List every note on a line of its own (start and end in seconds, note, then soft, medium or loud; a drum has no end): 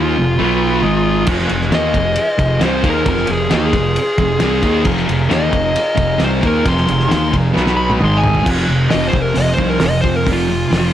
0.00 0.16 D#2 loud
0.00 0.16 D#3 medium
0.00 0.16 A#3 loud
0.00 0.16 D#4 loud
0.00 0.34 F4 medium
0.00 1.25 F4 medium
0.00 0.35 G#4 medium
0.00 0.35 C5 medium
0.16 0.39 F1 medium
0.16 0.34 F2 medium
0.16 0.38 C3 medium
0.38 0.81 B1 medium
0.38 0.82 B2 medium
0.38 0.83 F#3 medium
0.38 0.83 B3 medium
0.38 0.83 B4 medium
0.81 1.25 G#1 medium
0.81 1.27 G#2 medium
0.81 1.27 D#3 medium
0.81 1.27 G#3 medium
0.81 1.27 D#4 medium
0.81 1.23 G#4 medium
0.81 1.28 D#5 medium
1.25 1.49 F1 medium
1.25 1.48 F2 medium
1.25 1.48 C3 medium
1.25 1.50 F3 loud
1.25 4.81 F4 medium
1.25 4.81 G#4 medium
1.25 4.82 C5 medium
1.25 kick loud
1.25 crash loud
1.39 snare soft
1.49 1.70 F1 medium
1.49 1.68 F2 medium
1.49 1.68 C3 medium
1.49 ride medium
1.61 snare soft
1.71 1.93 D#2 medium
1.71 1.94 D#3 loud
1.71 1.94 A#3 loud
1.71 1.94 D#4 loud
1.71 2.61 D#5 loud
1.71 snare loud
1.71 ride medium
1.94 2.15 F1 medium
1.94 2.13 F2 medium
1.94 2.13 C3 medium
1.94 kick medium
1.94 ride medium
2.16 ride medium
2.38 2.60 F1 medium
2.38 2.57 F2 medium
2.38 2.57 C3 medium
2.38 kick loud
2.38 ride medium
2.59 2.83 C2 loud
2.59 2.82 C3 medium
2.59 2.82 G3 medium
2.59 2.83 C4 loud
2.59 snare loud
2.59 ride loud
2.66 2.86 C5 medium
2.82 3.05 D#2 loud
2.82 3.05 D#3 medium
2.82 3.05 A#3 medium
2.82 3.06 D#4 medium
2.82 kick medium
2.82 ride medium
2.90 3.08 A#4 medium
3.05 3.27 F1 medium
3.05 3.26 F2 loud
3.05 3.26 C3 loud
3.05 3.28 F3 loud
3.05 kick loud
3.05 ride loud
3.09 3.30 A#4 medium
3.17 snare soft
3.27 3.50 F1 medium
3.27 3.46 F2 medium
3.27 3.47 C3 medium
3.27 ride medium
3.32 3.53 G#4 medium
3.49 3.73 D#2 loud
3.49 3.73 D#3 loud
3.49 3.73 A#3 loud
3.49 3.73 D#4 loud
3.49 snare loud
3.49 ride medium
3.55 4.84 G#4 loud
3.73 3.95 F1 medium
3.73 3.92 F2 medium
3.73 3.93 C3 medium
3.73 kick medium
3.73 ride medium
3.96 ride medium
4.18 4.40 F1 medium
4.18 4.37 F2 medium
4.18 4.37 C3 medium
4.18 kick medium
4.18 ride medium
4.39 4.62 C2 loud
4.39 4.61 C3 medium
4.39 4.62 G3 medium
4.39 4.63 C4 medium
4.39 snare loud
4.39 ride loud
4.62 4.85 D#2 medium
4.62 4.85 D#3 medium
4.62 4.85 A#3 loud
4.62 4.86 D#4 loud
4.62 kick medium
4.62 ride medium
4.84 5.07 F1 medium
4.84 5.06 F2 loud
4.84 5.06 C3 medium
4.84 5.08 F3 loud
4.84 7.52 F4 medium
4.84 7.52 G#4 medium
4.84 7.52 A#4 medium
4.84 kick loud
4.84 crash loud
4.97 snare soft
5.07 5.29 F1 medium
5.07 5.26 F2 medium
5.07 5.27 C3 medium
5.07 ride medium
5.29 5.51 D#2 loud
5.29 5.50 D#3 loud
5.29 5.52 A#3 loud
5.29 5.53 D#4 loud
5.29 6.19 D#5 loud
5.29 snare loud
5.29 ride medium
5.50 5.74 F1 medium
5.50 5.70 F2 medium
5.50 5.70 C3 medium
5.50 kick medium
5.50 ride medium
5.76 ride medium
5.96 6.20 F1 medium
5.96 6.16 F2 medium
5.96 6.15 C3 medium
5.96 kick medium
5.96 ride medium
6.18 6.42 C2 medium
6.18 6.40 C3 medium
6.18 6.41 G3 medium
6.18 6.42 C4 medium
6.18 snare loud
6.18 ride loud
6.24 6.45 C5 loud
6.41 6.64 D#2 loud
6.41 6.64 D#3 medium
6.41 6.65 A#3 loud
6.41 6.65 D#4 medium
6.41 kick loud
6.41 ride medium
6.47 6.67 A#4 medium
6.64 6.87 F1 loud
6.64 6.85 F2 loud
6.64 6.86 C3 medium
6.64 6.88 F3 loud
6.64 kick loud
6.64 ride loud
6.68 7.11 C6 loud
6.77 snare soft
6.86 7.10 F1 medium
6.86 7.06 F2 medium
6.86 7.06 C3 medium
6.86 ride medium
7.00 snare soft
7.08 7.32 D#3 loud
7.08 7.32 A#3 loud
7.08 7.33 D#4 loud
7.08 snare loud
7.08 ride medium
7.12 7.33 D#2 medium
7.12 7.34 C6 loud
7.32 7.55 F1 medium
7.32 7.51 F2 medium
7.32 7.51 C3 medium
7.32 kick medium
7.32 ride medium
7.53 7.98 B1 loud
7.53 8.00 B2 medium
7.53 8.00 F#3 medium
7.53 8.00 B3 loud
7.53 8.01 B3 medium
7.53 8.01 F#4 medium
7.53 8.01 B4 medium
7.53 snare medium
7.66 snare medium
7.77 7.89 B5 medium
7.90 high tom medium
7.99 8.45 G#1 medium
7.99 8.43 G#2 medium
7.99 8.44 D#3 medium
7.99 8.44 G#3 medium
7.99 8.46 D#4 medium
7.99 8.43 G#4 medium
7.99 8.46 D#5 medium
7.99 mid tom medium
8.05 8.18 C6 loud
8.18 8.47 G#5 medium
8.24 floor tom loud
8.35 floor tom loud
8.43 8.64 F1 loud
8.43 8.67 F2 medium
8.43 8.67 C3 medium
8.43 8.67 F3 loud
8.43 10.93 F4 medium
8.43 10.93 G#4 medium
8.43 10.93 C5 medium
8.43 kick loud
8.47 crash loud
8.68 8.87 F1 medium
8.68 8.87 F2 medium
8.68 8.89 C3 medium
8.89 9.11 F2 loud
8.89 9.11 C3 medium
8.89 9.13 F3 loud
8.89 9.06 D#5 loud
8.89 snare loud
8.89 open hi-hat medium
8.93 9.11 F1 medium
9.07 9.22 C5 medium
9.12 9.32 F1 medium
9.12 9.34 F2 medium
9.12 9.34 C3 medium
9.12 kick medium
9.22 9.37 A#4 medium
9.35 9.55 F1 medium
9.35 9.57 F2 medium
9.35 9.57 C3 medium
9.35 9.52 D#5 medium
9.35 open hi-hat medium
9.54 9.70 C5 medium
9.58 9.77 C2 medium
9.58 9.80 F2 medium
9.58 9.80 C3 medium
9.58 9.81 F3 medium
9.58 kick medium
9.70 9.83 A#4 loud
9.80 10.00 F1 medium
9.80 10.02 F2 medium
9.80 10.02 C3 medium
9.80 snare loud
9.80 open hi-hat medium
9.86 9.99 D#5 loud
10.01 10.25 F2 medium
10.01 10.23 F2 medium
10.01 10.25 C3 medium
10.01 10.16 C5 medium
10.01 kick medium
10.16 10.29 A#4 medium
10.26 10.64 F1 medium
10.26 10.48 F2 medium
10.26 10.49 C3 loud
10.26 10.49 F3 medium
10.26 kick loud
10.26 open hi-hat medium
10.33 10.93 F4 loud
10.50 10.70 F2 medium
10.50 10.71 C3 medium
10.71 10.90 F1 medium
10.71 10.93 F2 loud
10.71 10.93 C3 loud
10.71 10.93 F3 loud
10.71 snare loud
10.71 open hi-hat medium